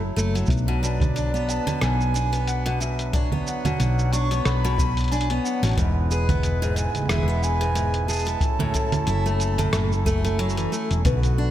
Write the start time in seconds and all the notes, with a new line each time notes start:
Already playing: F#1 F#3 E4 A4
0.16 F#1 A3, shaker
0.35 F#3, closed hi-hat, shaker
0.46 B1 B4, kick, shaker
0.50 D4, closed hi-hat, shaker
0.57 shaker
0.68 B2
0.83 B2 D5, shaker
1.00 kick, closed hi-hat, low conga, shaker
1.16 D4, closed hi-hat, shaker
1.34 B3, shaker
1.49 A5, closed hi-hat, shaker
1.67 B2, closed hi-hat, low conga, shaker
1.81 B1 B2 G#5, cross-stick, closed hi-hat, shaker
2.01 shaker
2.14 D4, shaker
2.32 B3, closed hi-hat, shaker
2.47 F#5, closed hi-hat, shaker
2.66 B2, closed hi-hat
2.81 B2 E5, shaker
2.99 closed hi-hat, shaker
3.13 D4 C#5, kick, closed hi-hat, shaker
3.32 B3, low conga
3.47 F#5, shaker
3.65 B2, closed hi-hat, low conga, shaker
3.80 B1 B2, closed hi-hat, shaker
3.99 shaker
4.13 D4 C#6, closed hi-hat, shaker
4.31 B3, closed hi-hat, shaker
4.45 B1 B5, cross-stick, closed hi-hat, shaker
4.65 B2, shaker
4.78 B2, kick, shaker
4.97 closed hi-hat, shaker
5.01 closed hi-hat
5.04 closed hi-hat
5.08 G#5, closed hi-hat
5.12 D4, closed hi-hat, shaker
5.16 closed hi-hat
5.21 closed hi-hat
5.25 closed hi-hat
5.30 B3, closed hi-hat
5.45 F#5, shaker
5.63 A1 B2, closed hi-hat, shaker
5.65 closed hi-hat
5.67 closed hi-hat
5.69 closed hi-hat
5.71 closed hi-hat
5.73 closed hi-hat
5.76 E1 G#2 G#3 B3 E4 B4, kick, closed hi-hat
5.78 closed hi-hat, shaker
6.11 G#4 B4, shaker
6.29 B3, kick, closed hi-hat, low conga, shaker
6.43 closed hi-hat, shaker
6.62 G#2, shaker
6.76 G#2 G#5, closed hi-hat, shaker
6.95 closed hi-hat, low conga, shaker
6.98 low conga
7.02 low conga
7.06 E1 G#4 E5, cross-stick, closed hi-hat, low conga
7.09 low conga, shaker
7.14 low conga
7.19 low conga
7.23 low conga
7.28 B3, shaker
7.43 G#5, shaker
7.61 G#2, closed hi-hat, shaker
7.75 G#2, closed hi-hat, shaker
7.94 closed hi-hat
8.08 G#4 A5, shaker
8.12 shaker
8.15 shaker
8.18 shaker
8.20 shaker
8.25 B3, closed hi-hat, shaker
8.28 shaker
8.41 F#3 C#4 A4, kick, closed hi-hat, shaker
8.59 A2, low conga
8.74 A2, kick, closed hi-hat, shaker
8.92 closed hi-hat, low conga, shaker
9.07 F#1 E4, closed hi-hat, shaker
9.26 A3, shaker
9.40 closed hi-hat, shaker
9.58 A2, closed hi-hat, low conga, shaker
9.73 F#1 A2, cross-stick, closed hi-hat, shaker
9.92 shaker
10.05 A3, kick, shaker
10.24 A3, closed hi-hat, shaker
10.39 F#3, closed hi-hat
10.49 shaker
10.57 E3, closed hi-hat, shaker
10.72 A3, shaker
10.91 E1, closed hi-hat, shaker
11.05 B1 B2 D3 F#4 B4, kick, closed hi-hat, low conga, shaker
11.23 closed hi-hat, shaker
11.38 D4